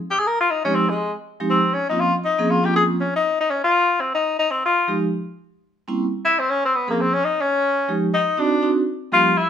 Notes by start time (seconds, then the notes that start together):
0.10 G4
0.19 G#4
0.27 A#4
0.40 F4
0.50 D#4
0.64 F3 G#3 C4 C#4 D#4 G4
0.75 C4
0.89 G#3
1.40 F3 G#3 C4 D#4 G4
1.50 C4
1.74 C#4
1.89 F3 A#3 C4 C#4 D#4 F4
2.00 F4
2.25 D#4
2.38 F3 A#3 C4 C#4 G#4
2.50 F4
2.63 F3 A#3 C4 C#4 F4 G4
2.76 G#4
3.00 C#4
3.16 D#4
3.40 D#4
3.50 C#4
3.64 F4
4.01 C4
4.14 D#4
4.39 D#4
4.51 C4
4.65 F4
4.88 F3 G#3 D#4 G4
5.88 G3 A#3 C4 C#4 E4
6.25 E4
6.39 C4
6.50 C#4
6.65 C4
6.76 B3
6.88 F3 A#3 C4 C#4 G#4
7.01 C4
7.14 C#4
7.24 D#4
7.41 C#4
7.88 F3 G#3 D#4 G4
8.14 D#4
8.37 C4 D4 D#4 F#4
8.62 C4 D4 D#4 F#4
9.12 F3 G3 A#3 C#4 F4 G4
9.37 E4